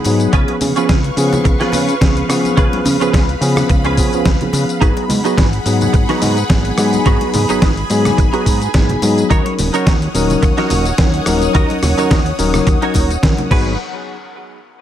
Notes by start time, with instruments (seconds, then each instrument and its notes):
Already playing: analog synth pad G#4 F#5 B5
0.04 analog synth bass G#2, tine electric piano F#3 B3 D#4 G#4, muted clean electric guitar stroke, open hi-hat, tambourine, muted conga
0.20 closed hi-hat, tambourine
0.33 analog synth bass C#2, clean electric guitar C#4 F4 G#4 B4, analog synth pad B4 F5 C#6, kick, closed hi-hat, tambourine
0.48 closed hi-hat, muted conga
0.61 analog synth bass C#3, open hi-hat, tambourine, low conga
0.76 tine electric piano F3 B3 C#4 G#4, clean electric guitar C#4 F4 G#4 B4, closed hi-hat, tambourine
0.89 analog synth bass C#2, kick, snare, closed hi-hat, tambourine
1.04 closed hi-hat
1.17 analog synth bass C#3, tine electric piano F3 B3 C#4 G#4, muted clean electric guitar stroke, open hi-hat, tambourine
1.32 closed hi-hat, tambourine, low conga
1.44 analog synth bass C#2, muted clean electric guitar stroke, kick, closed hi-hat, tambourine
1.60 tine electric piano F3 B3 C#4 G#4, clean electric guitar C#4 F4 G#4 B4, snare, closed hi-hat
1.72 analog synth bass C#3, open hi-hat, tambourine, low conga
1.89 closed hi-hat, tambourine
2.01 analog synth bass C#2, tine electric piano F3 B3 C#4 G#4, kick, snare, closed hi-hat, tambourine
2.17 closed hi-hat
2.29 analog synth bass C#3, tine electric piano F3 B3 C#4 G#4, muted clean electric guitar stroke, cross-stick, open hi-hat, tambourine
2.44 closed hi-hat, tambourine, high conga
2.57 analog synth bass C#2, tine electric piano F3 B3 C#4 G#4, clean electric guitar C#4 F4 G#4 B4, analog synth pad B5, kick, closed hi-hat, tambourine
2.73 closed hi-hat, muted conga, high conga
2.85 analog synth bass C#3, open hi-hat, tambourine, low conga
3.00 analog synth bass C#2, tine electric piano F3 B3 C#4 G#4, clean electric guitar C#4 F4 G#4 B4, closed hi-hat, tambourine
3.13 analog synth bass C#2, kick, snare, closed hi-hat, tambourine
3.29 closed hi-hat
3.41 analog synth bass C#3, tine electric piano F3 B3 C#4 G#4, muted clean electric guitar stroke, open hi-hat, tambourine
3.56 cross-stick, closed hi-hat, tambourine, low conga
3.69 analog synth bass C#2, muted clean electric guitar stroke, kick, closed hi-hat, tambourine
3.84 tine electric piano F3 B3 C#4 G#4, clean electric guitar C#4 F4 G#4 B4, closed hi-hat
3.97 analog synth bass C#3, tine electric piano F3 B3 C#4 G#4, kick, open hi-hat, tambourine
4.12 analog synth bass C#2, tine electric piano F3 B3 C#4 G#4, closed hi-hat, tambourine
4.25 analog synth bass C#2, kick, snare, closed hi-hat, tambourine
4.41 tine electric piano F3 B3 C#4 G#4, closed hi-hat, high conga, low conga
4.53 analog synth bass C#3, muted clean electric guitar stroke, open hi-hat, tambourine, muted conga
4.69 closed hi-hat, tambourine
4.81 analog synth bass G#1, tine electric piano F#3 B3 D#4 G#4, clean electric guitar D#4 F#4 G#4 B4, analog synth pad G#4 F#5 B5, kick, closed hi-hat, tambourine
4.97 closed hi-hat, muted conga
5.09 analog synth bass G#2, open hi-hat, tambourine, low conga
5.24 tine electric piano F#3 B3 D#4 G#4, clean electric guitar D#4 F#4 G#4 B4, closed hi-hat, tambourine
5.37 analog synth bass G#1, kick, snare, closed hi-hat, tambourine
5.53 closed hi-hat
5.65 analog synth bass G#2, tine electric piano F#3 B3 D#4 G#4, muted clean electric guitar stroke, open hi-hat, tambourine
5.81 closed hi-hat, tambourine, low conga
5.93 analog synth bass G#1, muted clean electric guitar stroke, kick, closed hi-hat, tambourine
6.09 tine electric piano F#3 B3 D#4 G#4, clean electric guitar D#4 F#4 G#4 B4, snare, closed hi-hat
6.22 analog synth bass G#2, open hi-hat, tambourine, low conga
6.37 closed hi-hat, tambourine
6.50 analog synth bass G#1, tine electric piano F#3 B3 D#4 G#4, kick, snare, closed hi-hat, tambourine
6.65 closed hi-hat
6.78 analog synth bass G#2, tine electric piano F#3 B3 D#4 G#4, muted clean electric guitar stroke, cross-stick, open hi-hat, tambourine
6.93 closed hi-hat, tambourine, high conga
7.06 analog synth bass G#1, tine electric piano F#3 B3 D#4, clean electric guitar D#4 F#4 G#4 B4, analog synth pad G#5, kick, closed hi-hat, tambourine
7.21 closed hi-hat, muted conga, high conga
7.34 analog synth bass G#2, open hi-hat, tambourine, low conga
7.49 analog synth bass G#1, tine electric piano F#3 B3 D#4 G#4, clean electric guitar D#4 F#4 G#4 B4, closed hi-hat, tambourine
7.62 analog synth bass G#1, kick, snare, closed hi-hat, tambourine
7.77 closed hi-hat
7.90 analog synth bass G#2, tine electric piano F#3 B3 D#4 G#4, muted clean electric guitar stroke, open hi-hat, tambourine
8.05 cross-stick, closed hi-hat, tambourine, low conga
8.18 analog synth bass G#1, muted clean electric guitar stroke, kick, closed hi-hat, tambourine
8.33 tine electric piano F#3 B3 D#4 G#4, clean electric guitar D#4 F#4 G#4 B4, closed hi-hat
8.46 analog synth bass G#2, kick, open hi-hat, tambourine
8.62 closed hi-hat, tambourine
8.74 analog synth bass G#1, tine electric piano F#3 B3 D#4 G#4, kick, snare, closed hi-hat, tambourine
8.89 closed hi-hat, high conga, low conga
9.02 analog synth bass G#2, tine electric piano F#3 B3 D#4 G#4, muted clean electric guitar stroke, open hi-hat, tambourine, muted conga
9.18 closed hi-hat, tambourine
9.30 analog synth bass D#2, tine electric piano F#3 C#4 D#4 A#4, clean electric guitar D#4 F#4 A#4 C#5, analog synth pad C#5 F#5 D#6, kick, closed hi-hat, tambourine
9.46 closed hi-hat, muted conga
9.59 analog synth bass D#1, open hi-hat, tambourine, low conga
9.73 tine electric piano F#3 C#4 D#4 A#4, clean electric guitar D#4 F#4 A#4 C#5, closed hi-hat, tambourine
9.87 analog synth bass D#2, kick, snare, closed hi-hat, tambourine
10.02 closed hi-hat
10.14 analog synth bass D#1, tine electric piano F#3 C#4 D#4 A#4, muted clean electric guitar stroke, open hi-hat, tambourine
10.30 closed hi-hat, tambourine, low conga
10.42 analog synth bass D#2, muted clean electric guitar stroke, kick, closed hi-hat, tambourine
10.57 tine electric piano F#3 C#4 D#4 A#4, clean electric guitar D#4 F#4 A#4 C#5, snare, closed hi-hat
10.70 analog synth bass D#1, open hi-hat, tambourine, low conga
10.86 closed hi-hat, tambourine
10.98 analog synth bass D#2, tine electric piano F#3 C#4 D#4 A#4, kick, snare, closed hi-hat, tambourine
11.14 closed hi-hat
11.26 analog synth bass D#1, tine electric piano F#3 C#4 D#4 A#4, muted clean electric guitar stroke, cross-stick, open hi-hat, tambourine
11.42 closed hi-hat, tambourine, high conga
11.54 analog synth bass D#2, tine electric piano F#3 C#4 D#4 A#4, clean electric guitar D#4 F#4 A#4 D#5, kick, closed hi-hat, tambourine
11.70 closed hi-hat, muted conga, high conga
11.83 analog synth bass D#1, cross-stick, open hi-hat, tambourine, low conga
11.97 analog synth bass D#2, tine electric piano F#3 C#4 D#4 A#4, clean electric guitar D#4 F#4 A#4 C#5, closed hi-hat, tambourine
12.11 analog synth bass D#2, kick, snare, closed hi-hat, tambourine
12.26 closed hi-hat
12.38 analog synth bass D#1, tine electric piano F#3 C#4 D#4 A#4, muted clean electric guitar stroke, open hi-hat, tambourine
12.54 cross-stick, closed hi-hat, tambourine, low conga
12.67 analog synth bass D#2, muted clean electric guitar stroke, kick, closed hi-hat, tambourine
12.82 tine electric piano F#3 C#4 D#4 A#4, clean electric guitar D#4 F#4 A#4 C#5, closed hi-hat, muted conga
12.94 analog synth bass D#1, kick, open hi-hat, tambourine, muted conga
13.10 closed hi-hat, tambourine
13.23 analog synth bass D#2, tine electric piano F#3 C#4 D#4 A#4, kick, snare, closed hi-hat, tambourine
13.37 closed hi-hat, high conga, low conga
13.50 analog synth bass G#1, tine electric piano F#3 B3 D#4 G#4, clean electric guitar F#4 G#4 B4, kick, crash, muted conga